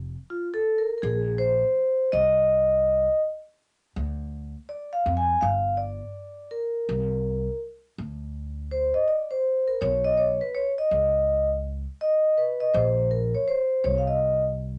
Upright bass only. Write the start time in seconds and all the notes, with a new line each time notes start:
Already playing: F1
1.03 A#1
2.13 C2
3.96 D2
5.06 F2
5.42 G1
6.89 C2
7.98 D2
9.81 B1
10.91 C#2
12.74 A#1
13.84 C2